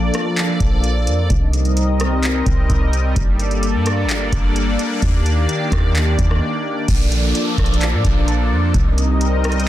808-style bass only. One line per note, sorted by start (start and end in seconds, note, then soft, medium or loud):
0.00 0.11 A#1 loud
0.60 1.08 A#1 loud
1.07 1.29 F2 loud
1.30 2.42 C2 loud
2.46 2.69 C2 loud
2.70 3.14 C2 loud
3.16 3.76 G1 loud
3.74 4.05 G2 loud
4.03 4.31 G1 loud
4.32 4.77 G1 loud
5.02 5.47 D#2 loud
5.72 6.17 D#2 loud
6.18 6.41 D#2 loud
6.88 7.33 A#1 loud
7.58 7.95 A#1 loud
7.93 8.04 A#2 loud
8.04 8.53 A#1 loud
8.51 8.73 F2 loud
8.74 9.69 C2 loud